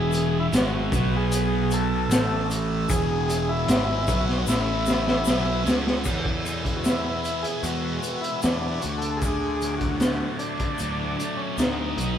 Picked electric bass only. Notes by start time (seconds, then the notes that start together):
Already playing: E1
0.52 G#1
0.93 B1
2.10 A1
2.89 E1
3.67 G#1
4.08 B1
4.47 A1
5.27 B1
5.66 C#2
6.06 E2
7.63 E2
8.44 E2
8.84 D2
10.81 D2
11.58 D2
11.97 B1